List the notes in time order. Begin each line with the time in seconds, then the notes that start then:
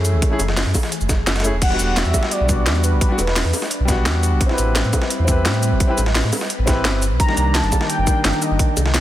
Already playing: F#2 E3 A3 C#4 E4 G#4
0.05 closed hi-hat, cabasa
0.13 C#2
0.22 kick, closed hi-hat
0.29 A3 C#4 E4 G#4
0.39 F#1, closed hi-hat, high bongo, cabasa
0.48 snare
0.57 snare, closed hi-hat, open hi-hat
0.66 F#2, snare
0.74 kick, closed hi-hat, open hi-hat, high bongo, cabasa
0.83 snare
0.92 closed hi-hat
1.01 F#1, cabasa
1.09 kick, snare, closed hi-hat, high bongo, cabasa
1.27 F#1, snare, closed hi-hat
1.36 snare, closed hi-hat
1.40 A3 C#4, snare, closed hi-hat
1.44 E4 G#4, closed hi-hat, cabasa
1.53 E1
1.62 D4 F#5, kick, closed hi-hat, crash
1.67 G3 B3, snare
1.72 D4 F#4
1.79 E1, closed hi-hat, cabasa
1.96 E5, snare, closed hi-hat
2.05 E2, closed hi-hat
2.14 kick, closed hi-hat, high bongo, cabasa
2.23 snare
2.31 D5, closed hi-hat
2.40 B1
2.45 G3 B3, kick, closed hi-hat, cabasa
2.50 D4 F#4
2.66 E2, snare, closed hi-hat
2.75 closed hi-hat
2.84 B4, closed hi-hat, cabasa
2.92 B1
3.01 B4, kick, closed hi-hat
3.08 G3 B3 D4 F#4
3.18 E1, closed hi-hat, high bongo, cabasa
3.27 snare
3.36 snare, closed hi-hat, open hi-hat
3.45 E2, snare
3.53 closed hi-hat, open hi-hat, high bongo, cabasa
3.62 snare
3.71 closed hi-hat
3.80 B1
3.85 G3 B3, kick, snare, closed hi-hat, cabasa
3.90 D4 F#4
4.06 E2, snare, closed hi-hat
4.23 closed hi-hat, cabasa
4.32 B1
4.41 G3 C4 B4, kick, closed hi-hat
4.46 C4 E4, snare
4.51 G4 B4
4.58 A1, closed hi-hat, cabasa
4.75 snare, closed hi-hat
4.84 A2, closed hi-hat
4.93 kick, closed hi-hat, high bongo, cabasa
5.02 snare
5.10 closed hi-hat
5.19 E2
5.25 C4 E4, kick, closed hi-hat, cabasa
5.29 G4 B4
5.45 A2, snare, closed hi-hat
5.54 closed hi-hat
5.63 closed hi-hat, cabasa
5.72 E1
5.80 kick, closed hi-hat
5.87 C4 E4 G4 B4
5.98 A1, closed hi-hat, high bongo, cabasa
6.06 snare
6.15 snare, closed hi-hat, open hi-hat
6.24 A2, snare
6.33 closed hi-hat, open hi-hat, high bongo, cabasa
6.41 snare
6.50 closed hi-hat
6.59 A1
6.66 C4 E4 G4 B4, kick, snare, closed hi-hat, high bongo, cabasa
6.85 G1, snare, closed hi-hat
7.02 D#3 D4 A#4, closed hi-hat, cabasa
7.11 C2
7.19 A#5, kick, closed hi-hat
7.25 D#3 G3, snare
7.30 A#3 D4
7.37 C2, closed hi-hat, cabasa
7.55 A5, snare, closed hi-hat
7.63 G1, closed hi-hat
7.72 kick, closed hi-hat, high bongo, cabasa
7.81 snare
7.89 G5, closed hi-hat
7.98 G1
8.04 D#3 G3, kick, closed hi-hat, cabasa
8.08 A#3 D4
8.24 G1, snare, closed hi-hat
8.33 closed hi-hat
8.42 D#5, closed hi-hat, cabasa
8.51 G1
8.59 kick, closed hi-hat
8.77 C2, closed hi-hat, high bongo, cabasa
8.86 snare
8.94 snare, closed hi-hat, open hi-hat